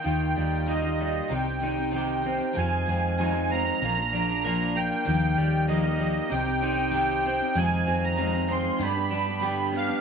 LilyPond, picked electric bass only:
\new Staff \with { instrumentName = "Picked electric bass" } { \clef bass \time 4/4 \key c \minor \tempo 4 = 96 ees,8 ees,4. c,2 | f,8 f,4. bes,,2 | ees,8 ees,4. c,2 | f,8 f,4. g,2 | }